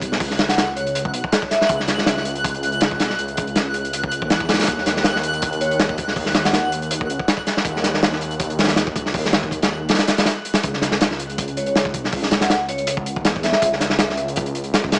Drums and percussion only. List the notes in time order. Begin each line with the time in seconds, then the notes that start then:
0.02 kick, closed hi-hat
0.12 snare
0.20 kick, open hi-hat
0.30 snare
0.39 snare, closed hi-hat
0.49 snare, closed hi-hat
0.58 snare, closed hi-hat
0.77 closed hi-hat
0.87 closed hi-hat
0.95 closed hi-hat
1.05 kick
1.14 closed hi-hat
1.24 kick
1.32 snare, closed hi-hat
1.42 kick
1.51 snare, closed hi-hat
1.61 snare
1.69 kick, closed hi-hat
1.80 snare
1.88 snare, closed hi-hat
1.98 snare
2.06 snare, closed hi-hat
2.17 snare
2.25 closed hi-hat
2.35 closed hi-hat
2.44 kick, closed hi-hat
2.54 closed hi-hat
2.63 closed hi-hat
2.72 closed hi-hat
2.81 snare, closed hi-hat
2.91 kick
3.00 snare, closed hi-hat
3.10 snare
3.19 closed hi-hat
3.28 closed hi-hat
3.37 kick, closed hi-hat
3.47 closed hi-hat
3.56 snare, closed hi-hat
3.74 closed hi-hat
3.85 closed hi-hat
3.93 closed hi-hat
4.03 kick
4.11 closed hi-hat
4.22 kick
4.30 snare, closed hi-hat
4.40 kick
4.49 snare, closed hi-hat
4.54 snare, closed hi-hat
4.59 snare, closed hi-hat
4.63 snare, closed hi-hat
4.67 kick, closed hi-hat
4.78 snare
4.86 snare, closed hi-hat
4.96 snare
5.04 snare, closed hi-hat
5.16 snare
5.23 closed hi-hat
5.33 closed hi-hat
5.42 kick, closed hi-hat
5.53 closed hi-hat
5.61 closed hi-hat
5.71 closed hi-hat
5.79 snare, closed hi-hat
5.89 kick
5.98 kick, closed hi-hat
6.08 snare
6.16 kick, open hi-hat
6.26 snare
6.35 snare, closed hi-hat
6.45 snare, closed hi-hat
6.53 snare, closed hi-hat
6.72 closed hi-hat
6.82 closed hi-hat
6.91 closed hi-hat
7.01 kick
7.10 closed hi-hat
7.19 kick
7.28 snare, closed hi-hat
7.37 kick
7.47 snare, closed hi-hat
7.57 snare
7.65 kick, closed hi-hat
7.76 snare
7.84 snare, closed hi-hat
7.94 snare
8.03 snare, closed hi-hat
8.12 snare
8.21 closed hi-hat
8.31 closed hi-hat
8.40 kick, closed hi-hat
8.50 closed hi-hat
8.59 snare, closed hi-hat
8.64 snare, closed hi-hat
8.68 snare, closed hi-hat
8.76 snare, closed hi-hat
8.87 kick
8.96 kick, closed hi-hat
9.06 snare
9.14 kick, open hi-hat
9.25 snare
9.33 snare, closed hi-hat
9.43 kick
9.51 kick, closed hi-hat
9.62 snare, closed hi-hat
9.89 snare, closed hi-hat
9.94 snare, closed hi-hat
9.98 snare, closed hi-hat
10.08 snare, closed hi-hat
10.18 snare, closed hi-hat
10.25 snare, closed hi-hat
10.45 closed hi-hat
10.54 snare, closed hi-hat
10.63 kick, closed hi-hat
10.73 snare
10.82 snare, closed hi-hat
10.91 snare
11.01 snare, closed hi-hat
11.11 snare
11.20 closed hi-hat
11.30 closed hi-hat
11.38 kick, closed hi-hat
11.48 closed hi-hat
11.57 closed hi-hat
11.66 closed hi-hat
11.76 snare, closed hi-hat
11.85 kick
11.94 kick, closed hi-hat
12.04 snare
12.12 kick, open hi-hat
12.23 snare
12.31 snare, closed hi-hat
12.41 snare, closed hi-hat
12.50 snare, closed hi-hat
12.69 closed hi-hat
12.78 closed hi-hat
12.87 closed hi-hat
12.97 kick
13.06 closed hi-hat
13.16 kick
13.25 snare, closed hi-hat
13.36 kick
13.43 snare, closed hi-hat
13.52 snare
13.62 kick, closed hi-hat
13.73 snare
13.80 snare, closed hi-hat
13.90 snare
13.99 snare, closed hi-hat
14.10 snare
14.17 closed hi-hat
14.28 closed hi-hat
14.36 kick, closed hi-hat
14.46 closed hi-hat
14.55 closed hi-hat
14.64 closed hi-hat
14.74 snare, closed hi-hat
14.84 kick
14.92 snare, closed hi-hat